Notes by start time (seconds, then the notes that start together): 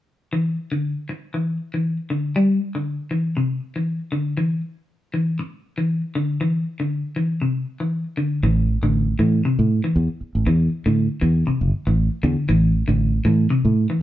0.33 E3
0.72 D3
1.09 muted clean electric guitar stroke
1.34 E3
1.74 E3
2.10 D3
2.36 G3
2.75 D3
3.11 E3
3.37 C3
3.76 E3
4.12 D3
4.37 E3
5.14 E3
5.39 muted clean electric guitar stroke
5.78 E3
6.15 D3
6.41 E3
6.80 D3
7.16 E3
7.42 C3
7.80 E3
8.17 D3
8.43 A1 E3
8.83 A1 D3
9.19 A2 E3
9.45 C3
9.59 A2
9.84 E3
9.96 E2
10.21 muted fingered electric bass stroke
10.35 A1
10.46 E2 E3
10.86 A2 D3
11.21 E2 E3
11.47 C3, muted fingered electric bass stroke
11.61 G1
11.87 A1 E3
12.23 E2 D3
12.49 A1 E3
12.88 A1 D3
13.25 A2 E3
13.50 C3
13.65 A2
13.90 E3